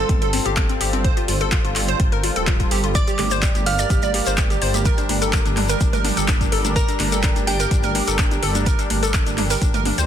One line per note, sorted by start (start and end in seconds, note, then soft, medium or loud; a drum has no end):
0.00 10.06 G3 medium
0.00 2.91 F4 medium
0.00 0.48 A4 medium
0.00 2.91 A4 medium
0.00 2.91 C5 medium
0.00 0.48 A5 medium
0.09 0.40 G1 loud
0.09 0.19 C4 medium
0.09 kick loud
0.09 closed hi-hat medium
0.22 0.31 A4 medium
0.22 closed hi-hat soft
0.33 0.43 C4 medium
0.33 open hi-hat loud
0.46 0.75 G1 medium
0.46 0.54 G4 medium
0.46 closed hi-hat soft
0.57 0.67 C4 medium
0.57 kick loud
0.57 clap loud
0.57 closed hi-hat medium
0.69 0.78 C4 medium
0.69 closed hi-hat soft
0.81 1.11 G1 loud
0.81 0.91 G4 medium
0.81 open hi-hat loud
0.93 1.02 C4 medium
0.93 closed hi-hat soft
1.04 1.14 C5 loud
1.04 kick loud
1.04 closed hi-hat medium
1.17 1.26 F4 medium
1.17 closed hi-hat soft
1.28 1.59 G1 loud
1.28 1.38 F4 medium
1.28 open hi-hat loud
1.41 1.50 A4 loud
1.41 closed hi-hat soft
1.52 1.62 F4 medium
1.52 kick loud
1.52 clap loud
1.52 closed hi-hat medium
1.65 1.94 G1 loud
1.65 1.74 F4 medium
1.65 closed hi-hat soft
1.76 1.86 F4 medium
1.76 clap soft
1.76 open hi-hat loud
1.88 1.97 C5 medium
1.88 closed hi-hat soft
2.00 2.30 G1 loud
2.00 2.10 F4 medium
2.00 kick loud
2.00 closed hi-hat medium
2.12 2.21 A#4 medium
2.12 closed hi-hat soft
2.24 2.33 F4 medium
2.24 open hi-hat loud
2.36 2.66 D1 medium
2.36 2.45 A4 medium
2.36 closed hi-hat soft
2.47 2.57 F4 medium
2.47 kick loud
2.47 clap loud
2.47 closed hi-hat medium
2.60 2.69 F4 medium
2.60 kick medium
2.60 closed hi-hat soft
2.71 3.01 G1 loud
2.71 2.81 G4 medium
2.71 open hi-hat loud
2.84 2.93 F4 medium
2.84 closed hi-hat soft
2.95 10.06 G4 medium
2.95 10.06 A#4 medium
2.95 10.06 D5 medium
2.95 3.05 D5 loud
2.95 3.57 D5 medium
2.95 3.57 D6 loud
2.95 kick loud
2.95 closed hi-hat medium
2.95 shekere medium
3.07 3.16 G4 medium
3.07 closed hi-hat soft
3.07 shekere soft
3.18 3.49 G1 loud
3.18 3.29 G4 medium
3.18 clap soft
3.18 open hi-hat loud
3.18 high conga medium
3.31 3.40 C5 loud
3.31 closed hi-hat soft
3.31 shekere medium
3.42 3.52 G4 medium
3.42 kick loud
3.42 clap loud
3.42 closed hi-hat medium
3.42 shekere medium
3.55 3.85 G1 loud
3.55 3.64 G4 medium
3.55 closed hi-hat soft
3.55 high conga medium
3.55 shekere soft
3.66 3.76 G4 medium
3.66 4.29 F5 medium
3.66 4.29 F6 medium
3.66 open hi-hat loud
3.79 3.88 D5 medium
3.79 closed hi-hat soft
3.79 shekere medium
3.90 4.21 G1 loud
3.90 4.00 G4 medium
3.90 kick loud
3.90 closed hi-hat medium
3.90 shekere medium
4.02 4.12 D5 medium
4.02 closed hi-hat soft
4.02 high conga medium
4.02 shekere soft
4.14 4.24 G4 medium
4.14 open hi-hat loud
4.26 4.56 G1 loud
4.26 4.35 C5 medium
4.26 closed hi-hat soft
4.26 shekere medium
4.38 4.48 G4 medium
4.38 kick loud
4.38 clap loud
4.38 closed hi-hat medium
4.38 high conga medium
4.38 shekere medium
4.50 4.59 G4 medium
4.50 closed hi-hat soft
4.50 shekere soft
4.62 4.92 G1 loud
4.62 4.72 C5 medium
4.62 open hi-hat loud
4.74 4.83 G4 medium
4.74 closed hi-hat soft
4.74 high conga medium
4.74 shekere medium
4.85 4.95 A#4 loud
4.85 kick loud
4.85 closed hi-hat medium
4.85 shekere medium
4.98 5.07 D4 medium
4.98 closed hi-hat soft
4.98 shekere soft
5.09 5.40 G1 loud
5.09 5.19 D4 medium
5.09 open hi-hat loud
5.09 high conga medium
5.22 5.31 A4 loud
5.22 closed hi-hat soft
5.22 shekere medium
5.33 kick loud
5.33 clap loud
5.33 closed hi-hat medium
5.33 shekere medium
5.46 5.75 G1 loud
5.46 5.54 D4 medium
5.46 closed hi-hat soft
5.46 high conga medium
5.46 shekere soft
5.57 5.67 D4 medium
5.57 clap soft
5.57 mid tom medium
5.57 open hi-hat loud
5.69 5.78 A#4 medium
5.69 closed hi-hat soft
5.69 shekere medium
5.80 6.11 G1 loud
5.80 5.91 D4 medium
5.80 kick loud
5.80 closed hi-hat medium
5.80 shekere medium
5.93 6.02 A#4 medium
5.93 closed hi-hat soft
5.93 mid tom medium
5.93 high conga medium
5.93 shekere soft
6.04 6.14 D4 medium
6.04 mid tom medium
6.04 open hi-hat loud
6.17 6.47 G1 loud
6.17 6.26 A4 medium
6.17 closed hi-hat soft
6.17 shekere medium
6.28 6.38 D4 medium
6.28 kick loud
6.28 clap loud
6.28 closed hi-hat medium
6.28 high conga medium
6.28 shekere medium
6.41 6.50 D4 medium
6.41 kick medium
6.41 closed hi-hat soft
6.41 shekere soft
6.52 6.82 G1 loud
6.52 6.62 A4 medium
6.52 open hi-hat loud
6.65 6.74 D4 medium
6.65 closed hi-hat soft
6.65 high conga medium
6.65 shekere medium
6.76 7.38 A#4 medium
6.76 6.86 A#4 loud
6.76 7.38 A#5 loud
6.76 kick loud
6.76 closed hi-hat medium
6.76 shekere medium
6.88 6.97 D4 medium
6.88 closed hi-hat soft
6.88 shekere soft
6.99 7.30 G1 loud
6.99 7.10 D4 medium
6.99 clap soft
6.99 open hi-hat loud
6.99 high conga medium
7.12 7.21 A4 medium
7.12 closed hi-hat soft
7.12 shekere medium
7.23 7.33 D4 medium
7.23 kick loud
7.23 clap loud
7.23 closed hi-hat medium
7.23 shekere medium
7.36 7.66 G1 loud
7.36 7.45 D4 medium
7.36 closed hi-hat soft
7.36 high conga medium
7.36 shekere soft
7.47 7.57 D4 medium
7.47 8.10 G4 medium
7.47 8.10 G5 medium
7.47 open hi-hat loud
7.60 7.69 A#4 medium
7.60 closed hi-hat soft
7.60 shekere medium
7.71 8.01 G1 loud
7.71 7.81 D4 medium
7.71 kick loud
7.71 closed hi-hat medium
7.71 shekere medium
7.83 7.93 A#4 medium
7.83 closed hi-hat soft
7.83 high conga loud
7.83 shekere soft
7.95 8.05 D4 medium
7.95 open hi-hat loud
8.07 8.37 G1 medium
8.07 8.16 A4 medium
8.07 closed hi-hat soft
8.07 shekere medium
8.19 8.29 D4 medium
8.19 kick loud
8.19 clap loud
8.19 closed hi-hat medium
8.19 high conga medium
8.19 shekere medium
8.31 8.40 D4 medium
8.31 closed hi-hat soft
8.31 shekere soft
8.43 8.73 G1 loud
8.43 8.52 A4 medium
8.43 open hi-hat loud
8.55 8.64 D4 medium
8.55 closed hi-hat soft
8.55 high conga medium
8.55 shekere medium
8.66 8.76 A#4 loud
8.66 kick loud
8.66 closed hi-hat medium
8.66 shekere medium
8.79 8.88 D4 medium
8.79 closed hi-hat soft
8.79 shekere soft
8.90 9.21 G1 loud
8.90 9.00 D4 medium
8.90 open hi-hat loud
8.90 high conga loud
9.03 9.12 A4 loud
9.03 closed hi-hat soft
9.03 shekere medium
9.14 9.24 D4 medium
9.14 kick loud
9.14 clap loud
9.14 closed hi-hat medium
9.14 shekere medium
9.27 9.56 G1 loud
9.27 9.35 D4 medium
9.27 closed hi-hat soft
9.27 high conga medium
9.27 shekere soft
9.38 9.48 D4 medium
9.38 clap soft
9.38 mid tom medium
9.38 open hi-hat loud
9.50 9.59 A#4 medium
9.50 open hi-hat medium
9.50 shekere medium
9.61 9.92 G1 loud
9.61 9.71 D4 medium
9.61 kick loud
9.61 closed hi-hat medium
9.61 shekere medium
9.74 9.83 A#4 medium
9.74 closed hi-hat soft
9.74 mid tom medium
9.74 high conga medium
9.74 shekere soft
9.85 9.95 D4 medium
9.85 mid tom loud
9.85 open hi-hat loud
9.98 10.06 D2 medium
9.98 10.06 C5 medium
9.98 closed hi-hat soft
9.98 shekere medium